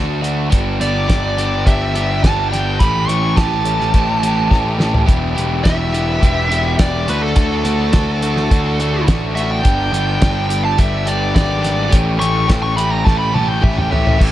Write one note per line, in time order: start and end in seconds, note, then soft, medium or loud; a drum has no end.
0.00 0.49 D2 medium
0.00 0.20 A3 medium
0.00 0.20 D4 loud
0.00 0.21 F#4 medium
0.21 0.49 A3 medium
0.21 0.49 D4 medium
0.21 0.50 F#4 medium
0.21 closed hi-hat medium
0.50 0.79 G1 medium
0.50 0.78 B3 medium
0.50 0.79 D4 medium
0.50 0.80 G4 medium
0.50 kick loud
0.50 closed hi-hat medium
0.80 1.08 G1 medium
0.80 1.06 B3 medium
0.80 1.07 D4 medium
0.80 1.07 G4 medium
0.80 1.64 D5 medium
0.80 closed hi-hat medium
1.07 1.64 G1 medium
1.07 1.36 B3 medium
1.07 1.37 D4 medium
1.07 1.38 G4 medium
1.07 kick medium
1.07 snare loud
1.07 closed hi-hat medium
1.37 1.65 B3 medium
1.37 1.65 D4 medium
1.37 1.66 G4 medium
1.37 closed hi-hat medium
1.66 2.21 G1 medium
1.66 1.94 B3 medium
1.66 1.94 D4 medium
1.66 1.96 G4 loud
1.66 2.22 E5 medium
1.66 kick loud
1.66 closed hi-hat medium
1.95 2.23 B3 medium
1.95 2.24 D4 medium
1.95 2.25 G4 medium
1.95 closed hi-hat medium
2.23 2.78 G1 medium
2.23 2.51 B3 loud
2.23 2.50 D4 loud
2.23 2.52 G4 loud
2.23 2.49 A5 medium
2.23 kick loud
2.23 snare loud
2.23 closed hi-hat medium
2.49 2.79 B3 medium
2.49 2.79 D4 medium
2.49 2.81 G4 medium
2.49 2.78 G5 medium
2.54 snare soft
2.54 closed hi-hat medium
2.79 3.08 A1 medium
2.79 3.08 E3 medium
2.79 3.07 A3 medium
2.79 3.08 C#4 loud
2.79 3.09 G4 medium
2.79 3.08 B5 medium
2.79 kick loud
2.79 closed hi-hat medium
3.08 3.36 A1 medium
3.08 3.36 E3 medium
3.08 3.36 A3 medium
3.08 3.36 C#4 medium
3.08 3.37 G4 medium
3.08 3.36 C#6 medium
3.08 closed hi-hat medium
3.36 3.92 A1 medium
3.36 3.64 E3 medium
3.36 3.64 A3 medium
3.36 3.65 C#4 medium
3.36 3.64 G4 loud
3.36 5.04 A5 medium
3.36 kick loud
3.36 snare loud
3.36 closed hi-hat medium
3.65 3.93 E3 medium
3.65 3.93 A3 medium
3.65 3.93 C#4 medium
3.65 3.94 G4 medium
3.65 closed hi-hat medium
3.80 snare soft
3.94 4.48 A1 medium
3.94 4.22 E3 medium
3.94 4.22 A3 medium
3.94 4.22 C#4 medium
3.94 4.22 G4 medium
3.94 kick medium
3.94 closed hi-hat medium
4.23 4.49 E3 medium
4.23 4.49 A3 medium
4.23 4.49 C#4 medium
4.23 4.49 G4 medium
4.23 closed hi-hat medium
4.50 5.06 A1 medium
4.50 4.77 E3 medium
4.50 4.77 A3 medium
4.50 4.78 C#4 medium
4.50 4.78 G4 loud
4.50 kick loud
4.50 snare medium
4.78 5.05 E3 medium
4.78 5.06 A3 medium
4.78 5.06 C#4 medium
4.78 5.06 G4 medium
4.78 snare medium
4.95 floor tom medium
5.06 5.36 E1 medium
5.06 5.34 E3 medium
5.06 7.07 E3 medium
5.06 5.34 B3 loud
5.06 7.07 B3 medium
5.06 7.07 D4 medium
5.06 5.35 E4 loud
5.06 5.34 G4 medium
5.06 7.07 G4 medium
5.06 kick loud
5.06 closed hi-hat medium
5.35 5.64 E1 medium
5.35 5.62 E3 medium
5.35 5.62 B3 medium
5.35 5.64 E4 medium
5.35 5.63 G4 medium
5.35 closed hi-hat medium
5.64 6.20 E1 medium
5.64 5.91 E3 medium
5.64 5.92 B3 medium
5.64 5.91 E4 loud
5.64 5.92 G4 loud
5.64 6.75 E5 medium
5.64 kick loud
5.64 snare loud
5.64 closed hi-hat medium
5.92 6.19 E3 medium
5.92 6.20 B3 medium
5.92 6.20 E4 medium
5.92 6.21 G4 medium
5.92 closed hi-hat medium
6.21 6.77 E1 medium
6.21 6.48 E3 medium
6.21 6.49 B3 medium
6.21 6.50 E4 medium
6.21 6.50 G4 loud
6.21 kick loud
6.21 closed hi-hat medium
6.50 6.77 E3 medium
6.50 6.77 B3 medium
6.50 6.78 E4 medium
6.50 6.78 G4 medium
6.50 closed hi-hat medium
6.79 7.07 E1 medium
6.79 7.06 E3 medium
6.79 7.06 B3 medium
6.79 7.06 E4 loud
6.79 7.06 G4 loud
6.79 7.08 D5 medium
6.79 kick loud
6.79 snare loud
6.79 closed hi-hat medium
7.05 7.35 D2 medium
7.05 9.61 D3 medium
7.05 9.61 A3 medium
7.05 7.36 A3 medium
7.05 7.37 D4 loud
7.05 9.61 E4 medium
7.05 7.37 F#4 loud
7.05 9.61 C#5 medium
7.05 snare soft
7.05 closed hi-hat medium
7.10 7.22 B4 medium
7.23 7.36 A4 medium
7.36 7.64 D2 medium
7.36 7.64 A3 medium
7.36 7.65 D4 loud
7.36 7.65 F#4 loud
7.36 9.04 A4 medium
7.36 kick loud
7.36 closed hi-hat medium
7.65 7.92 D2 medium
7.65 7.93 A3 medium
7.65 7.94 D4 medium
7.65 7.94 F#4 medium
7.65 closed hi-hat medium
7.93 8.48 D2 medium
7.93 8.21 A3 medium
7.93 8.23 D4 medium
7.93 8.22 F#4 loud
7.93 kick loud
7.93 snare loud
7.93 closed hi-hat medium
8.22 8.50 A3 medium
8.22 8.50 D4 medium
8.22 8.51 F#4 medium
8.22 closed hi-hat medium
8.37 snare soft
8.51 9.05 D2 medium
8.51 8.79 A3 medium
8.51 8.79 D4 medium
8.51 8.80 F#4 loud
8.51 kick loud
8.51 closed hi-hat medium
8.80 9.06 A3 medium
8.80 9.06 D4 medium
8.80 9.06 F#4 medium
8.80 closed hi-hat medium
9.07 9.62 A1 medium
9.07 9.34 A3 medium
9.07 9.34 D4 medium
9.07 9.35 F#4 loud
9.07 kick loud
9.07 snare loud
9.07 closed hi-hat medium
9.35 9.63 A3 medium
9.35 9.62 D4 medium
9.35 9.63 F#4 medium
9.35 9.50 E5 medium
9.35 closed hi-hat medium
9.51 10.61 G5 medium
9.63 9.92 G1 medium
9.63 11.91 G3 medium
9.63 9.91 B3 loud
9.63 9.91 D4 medium
9.63 11.91 D4 medium
9.63 9.93 G4 loud
9.63 11.91 A4 medium
9.63 11.91 B4 medium
9.63 kick loud
9.63 closed hi-hat medium
9.92 10.20 G1 medium
9.92 10.20 B3 medium
9.92 10.20 D4 medium
9.92 10.21 G4 medium
9.92 closed hi-hat medium
10.21 10.76 G1 medium
10.21 10.47 B3 loud
10.21 10.48 D4 medium
10.21 10.49 G4 loud
10.21 kick loud
10.21 snare loud
10.21 closed hi-hat medium
10.49 10.76 B3 medium
10.49 10.77 D4 medium
10.49 10.77 G4 medium
10.49 closed hi-hat medium
10.65 10.78 A5 medium
10.77 11.33 G1 medium
10.77 11.04 B3 medium
10.77 11.05 D4 loud
10.77 11.06 G4 loud
10.77 11.07 E5 medium
10.77 kick loud
10.77 closed hi-hat medium
11.05 11.33 B3 medium
11.05 11.34 D4 medium
11.05 11.35 G4 medium
11.05 11.34 D5 medium
11.05 closed hi-hat medium
11.34 11.90 G#1 medium
11.34 11.60 B3 loud
11.34 11.60 D4 medium
11.34 11.61 G4 loud
11.34 11.91 D5 medium
11.34 kick loud
11.34 snare loud
11.34 closed hi-hat medium
11.61 11.89 B3 medium
11.61 11.89 D4 medium
11.61 11.90 G4 loud
11.61 snare soft
11.61 closed hi-hat medium
11.89 12.17 E3 loud
11.89 12.18 A3 medium
11.89 14.17 A3 medium
11.89 12.18 C#4 medium
11.89 12.18 G4 loud
11.89 14.18 G4 medium
11.89 closed hi-hat loud
11.93 12.20 A1 loud
11.93 14.18 C#4 medium
11.93 kick loud
12.18 12.48 A1 medium
12.18 12.46 E3 medium
12.18 12.47 A3 medium
12.18 12.47 C#4 medium
12.18 12.47 G4 medium
12.18 12.48 C#6 medium
12.18 closed hi-hat medium
12.47 13.03 A1 medium
12.47 12.75 E3 medium
12.47 12.75 A3 loud
12.47 12.76 C#4 medium
12.47 12.76 G4 loud
12.47 kick loud
12.47 snare loud
12.47 closed hi-hat loud
12.63 12.76 C#6 medium
12.76 13.04 E3 medium
12.76 13.05 A3 medium
12.76 13.05 C#4 medium
12.76 13.06 G4 medium
12.76 12.91 B5 medium
12.76 closed hi-hat medium
12.91 13.04 A#5 medium
13.04 13.60 A1 medium
13.04 13.32 E3 loud
13.04 13.33 A3 loud
13.04 13.33 C#4 medium
13.04 13.33 G4 loud
13.04 13.18 A5 medium
13.04 kick loud
13.04 snare medium
13.18 13.34 B5 medium
13.33 13.60 E3 medium
13.33 13.61 A3 medium
13.33 13.61 C#4 medium
13.33 13.61 G4 loud
13.33 13.48 A5 medium
13.33 high tom medium
13.48 13.62 G5 medium
13.61 14.17 A1 medium
13.61 13.90 E3 loud
13.61 13.90 A3 loud
13.61 13.89 C#4 loud
13.61 13.91 G4 loud
13.61 13.77 E5 medium
13.61 kick loud
13.61 mid tom medium
13.77 13.91 G5 medium
13.77 mid tom medium
13.91 14.17 E3 medium
13.91 14.17 A3 medium
13.91 14.18 C#4 medium
13.91 14.18 G4 loud
13.91 14.19 E5 loud
13.91 floor tom medium
14.07 floor tom medium
14.18 14.32 A1 medium
14.18 14.32 E3 medium
14.18 14.32 A3 medium
14.18 14.32 C#4 medium
14.18 14.32 G4 loud
14.18 14.32 A4 medium
14.18 14.32 C#5 medium
14.18 14.32 G5 medium
14.18 kick loud
14.18 crash loud
14.23 14.32 E4 medium